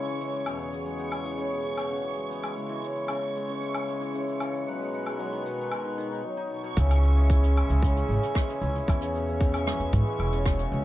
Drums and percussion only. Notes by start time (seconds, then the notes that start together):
0.07 shaker
0.21 shaker
0.34 shaker
0.46 low woodblock, shaker
0.60 shaker
0.73 shaker
0.86 shaker
0.99 shaker
1.12 low woodblock, shaker
1.25 shaker
1.38 shaker
1.52 shaker
1.65 shaker
1.77 low woodblock, shaker
1.91 shaker
1.94 shaker
1.97 shaker
2.00 shaker
2.04 shaker
2.08 shaker
2.11 shaker
2.14 shaker
2.18 shaker
2.31 shaker
2.44 low woodblock, shaker
2.57 shaker
2.84 shaker
2.96 shaker
3.08 low woodblock, shaker
3.22 shaker
3.36 shaker
3.48 shaker
3.62 shaker
3.75 low woodblock, shaker
3.88 shaker
4.02 shaker
4.14 shaker
4.28 shaker
4.40 low woodblock, shaker
4.54 shaker
4.67 shaker
4.81 shaker
4.93 shaker
5.06 low woodblock, shaker
5.19 shaker
5.33 shaker
5.46 shaker
5.60 shaker
5.72 low woodblock, shaker
5.99 shaker
6.13 shaker
6.77 kick, closed hi-hat, shaker
6.91 closed hi-hat, low woodblock, shaker
7.04 shaker
7.17 shaker
7.22 shaker
7.26 kick, closed hi-hat, shaker
7.31 shaker
7.36 shaker
7.40 closed hi-hat, shaker
7.45 shaker
7.57 low woodblock, shaker
7.70 closed hi-hat, shaker
7.83 kick, closed hi-hat
7.96 closed hi-hat, shaker
8.11 shaker
8.23 closed hi-hat, shaker
8.35 kick, cross-stick, closed hi-hat, shaker
8.49 closed hi-hat, shaker
8.62 shaker
8.75 closed hi-hat, shaker
8.88 kick, closed hi-hat, low woodblock, shaker
9.01 closed hi-hat, shaker
9.16 shaker
9.29 shaker
9.41 kick, closed hi-hat, shaker
9.54 closed hi-hat, low woodblock, shaker
9.67 cross-stick, shaker
9.80 closed hi-hat, shaker
9.92 kick, closed hi-hat, shaker
10.07 shaker
10.20 low woodblock, shaker
10.28 shaker
10.32 closed hi-hat
10.46 kick, cross-stick, closed hi-hat, shaker
10.59 closed hi-hat, shaker
10.72 shaker